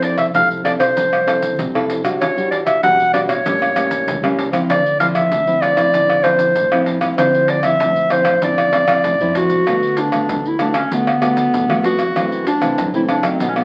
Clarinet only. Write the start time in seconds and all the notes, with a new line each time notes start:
0.03 D5
0.18 E5
0.35 F5
0.65 D5
0.79 C5
2.20 C#5
2.51 D5
2.66 E5
2.83 F#5
3.13 D5
3.28 C#5
4.70 D5
5.00 F5
5.14 E5
5.61 D5
6.23 C5
7.18 C5
7.49 D5
7.64 E5
8.12 C5
8.44 D5
9.37 F#4
9.99 D4
10.47 E4
10.61 D4
10.76 C#4
10.93 B3
11.85 F#4
12.47 D4
12.95 E4
13.10 D4
13.25 C4
13.42 B3
13.48 C#4
13.56 B3